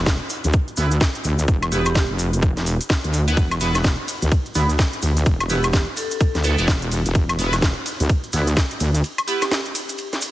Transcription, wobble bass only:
Already playing: E1
0.44 D2
0.77 D2
1.24 D2
1.48 E1
1.72 E1
2.10 F1
2.57 E1
3.04 D2
3.37 E1
3.61 E1
4.22 D2
4.55 D2
5.02 D2
5.26 E1
5.50 E1
6.35 D2
6.58 E1
6.68 E1
7.06 E1
7.15 E1
7.39 E1
8.00 D2
8.33 D2
8.80 D2

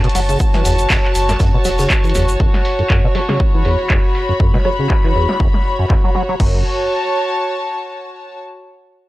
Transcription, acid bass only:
0.04 B2
0.15 F#3
0.29 C#3
0.54 E3
0.65 E2
0.90 F#1
1.29 F#2
1.40 F#2
1.54 B2
1.65 F#3
1.79 C#3
2.04 E3
2.15 E2
2.40 F#1
2.79 F#2
2.90 F#2
3.04 B2
3.15 F#3
3.29 C#3
3.54 E3
3.65 E2
3.90 F#1
4.29 F#2
4.40 F#2
4.54 B2
4.65 F#3
4.79 C#3
5.04 E3
5.15 E2
5.40 F#1
5.79 F#2
5.90 F#2
6.04 F#3
6.15 F#3
6.29 F#3
6.40 F#2

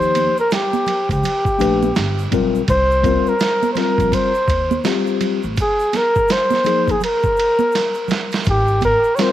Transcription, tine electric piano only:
Already playing: F3 A#3 D#4 G4
1.58 A3 D4 G4 B4
2.32 G3 C4 F4 A#4
3.03 G3 C4 F4 A#4
3.76 G3 C4 F4 A#4
4.84 G3 C4 F4 G4
6.64 F3 A#3 D#4 G#4
9.18 G3 C4 F4 A#4

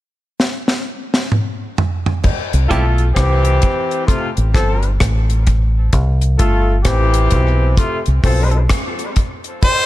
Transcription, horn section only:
2.69 A3 F4 A4
3.15 E3 C4 G4
4.08 C3 A3 F4
4.55 F3 C4 A4
6.39 A3 F4 A4
6.84 E3 C4 G4
7.78 C3 A3 F4
8.25 F3 C4 A4

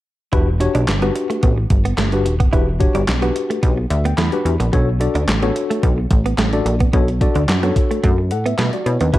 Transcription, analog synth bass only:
0.33 E1
0.75 B1
0.88 G1
1.43 A1
1.70 G1
1.98 G1
2.26 D#1
2.53 E1
2.95 G1
3.08 B1
3.63 B1
3.90 D2
4.18 E2
4.45 E2
4.60 A#1
4.73 B1
5.15 D2
5.28 A1
5.83 B1
6.11 A1
6.38 A1
6.66 A#1
6.93 B1
7.35 D2
7.48 F#2
8.04 F#2
8.31 A2
8.59 B2
8.86 B2
9.01 D#2
9.14 E1

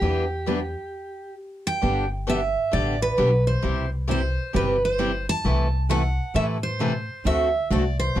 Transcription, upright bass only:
0.02 E2
1.83 G1
2.73 A1
3.18 B1
3.64 C2
4.55 G1
5.45 C2
6.35 A2
7.25 D2
7.71 C2
8.16 B1

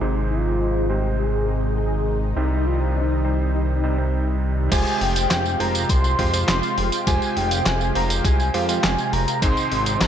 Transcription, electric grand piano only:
0.01 G#2 G#3 C4 D#4 C5
0.89 G#2 G#3 C4 D#4 C5
2.36 C3 G3 C4 D#4 C5
3.25 C3 G3 C4 D#4 C5
3.84 C3 G3 C4 D#4 C5
3.98 C3 G3 C4 D#4 C5
4.72 G#3 F4 G4 C5
5.60 G#3 F4 G4 C5
6.19 G#3 F4 G4 C5
6.33 G#3 F4 G4 C5
7.07 G#3 F4 G4 C5
7.95 G#3 F4 G4 C5
8.54 G#3 F4 G4 C5
8.69 G#3 F4 G4 C5
9.42 G#2 G#3 C4 D#4 C5

